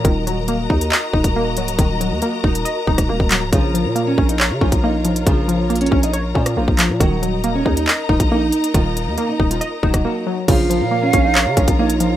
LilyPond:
<<
  \new Staff \with { instrumentName = "Flute" } { \time 4/4 \key bes \minor \tempo 4 = 138 r1 | r1 | r1 | r1 |
r1 | r1 | f''2. des''8 f''8 | }
  \new Staff \with { instrumentName = "String section" } { \time 4/4 \key bes \minor << { <bes' bes''>1~ | <bes' bes''>1~ | <bes' bes''>1~ | <bes' bes''>1 |
<bes' bes''>1~ | <bes' bes''>1 | <bes' bes''>1 | } \\ { <ges' ees''>1~ | <ges' ees''>1 | <f' des''>1~ | <f' des''>1 |
<ees' ees''>1~ | <ees' ees''>1 | <f' des''>1 | } >> }
  \new Staff \with { instrumentName = "Nylon-string guitar" } { \time 4/4 \key bes \minor r1 | r1 | <f f'>4~ <f f'>16 <des' des''>8 <ees' ees''>16 r8 <f f'>8 <ees' ees''>4 | <f f'>4~ <f f'>16 <des' des''>8 <ees' ees''>16 r8 <f f'>8 <f f'>4 |
<ges ges'>4~ <ges ges'>16 <des' des''>8 <ees' ees''>16 r8 <f f'>8 <ees' ees''>4 | <f f'>4~ <f f'>16 <ees' ees''>8 <f f'>16 r8 <ges ges'>8 <ges ges'>4 | <f f'>4~ <f f'>16 <des' des''>8 <ees' ees''>16 r8 <f f'>8 <ees' ees''>4 | }
  \new Staff \with { instrumentName = "Synth pluck" } { \time 4/4 \key bes \minor ees8 ges8 bes8 ees'8 ees''8 ees'8 bes8 ges8 | ees8 ges8 bes8 ees'8 ees''8 ees'8 bes8 ges8 | des8 f8 bes8 des'8 des''8 des'8 bes8 f8 | des8 f8 bes8 des'8 des''8 des'8 bes8 f8 |
ees8 ges8 bes8 ees'8 ees''8 ees'8 bes4 | ees4 bes8 ees'8 ees''8 ees'8 bes8 ges8 | des8 f8 bes8 des'8 des''8 des'8 bes8 f8 | }
  \new Staff \with { instrumentName = "808-style bass" } { \clef bass \time 4/4 \key bes \minor ees,,4. ees,8 r8 ees,,4 des,,8 | ees,,8. ees,16 r8 ees,,8 r8 ees,,8 ees,,16 ees,,8 des,,16 | bes,,8. bes,8. bes,,8. des16 bes,,16 bes,,4~ bes,,16 | bes,,4. bes,,4 bes,8 bes,,16 bes,,8 bes,16 |
ees,,4. ees,8 r8 ees,,16 bes,,8. r8 | ees,,8. ees,16 r8 ees,,8 r8 ees,,16 ees,,16 r4 | bes,,8. bes,8. bes,,8. des16 bes,,16 bes,,4~ bes,,16 | }
  \new DrumStaff \with { instrumentName = "Drums" } \drummode { \time 4/4 <hh bd>8 hh8 hh8 bd16 hh16 hc8 bd16 <hh bd>16 r8 hh16 hh16 | <hh bd>8 hh8 hh8 bd16 hh16 hh8 bd16 <hh bd ss>16 r16 bd16 <hc hh>8 | <hh bd>8 hh8 hh8 bd16 hh16 hc8 bd16 <hh bd>16 r8 hh16 hh16 | <hh bd>8 hh8 hh32 hh32 hh32 hh32 bd16 hh16 hh8 bd16 <hh ss>16 r16 bd16 <hc hh>8 |
<hh bd>8 hh8 hh8 bd16 hh16 hc8 bd16 <hh bd>16 r8 hh16 hh16 | <hh bd>8 hh8 hh8 bd16 hh16 hh8 bd16 <hh bd ss>16 r4 | <cymc hh bd>8 hh8 r8 <hh bd>8 hc8 <hh bd>16 <hh bd>16 r16 hh16 hh8 | }
>>